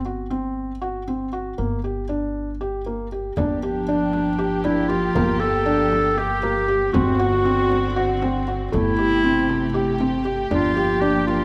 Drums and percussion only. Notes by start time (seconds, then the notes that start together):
3.37 frame drum
4.13 frame drum
4.64 frame drum
5.16 frame drum
5.92 frame drum
6.43 frame drum
6.94 frame drum
7.72 frame drum
8.23 frame drum
8.74 frame drum
9.49 frame drum
10.00 frame drum
10.51 frame drum
11.28 frame drum